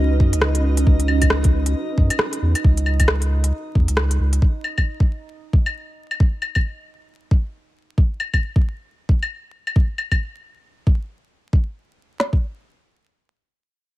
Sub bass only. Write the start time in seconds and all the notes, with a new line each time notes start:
Already playing: C#2
0.20 F#2
0.33 C#2
0.87 C#2
1.98 F#2
2.42 E2
2.65 C#2
3.75 E2
3.89 C#2
4.20 C#2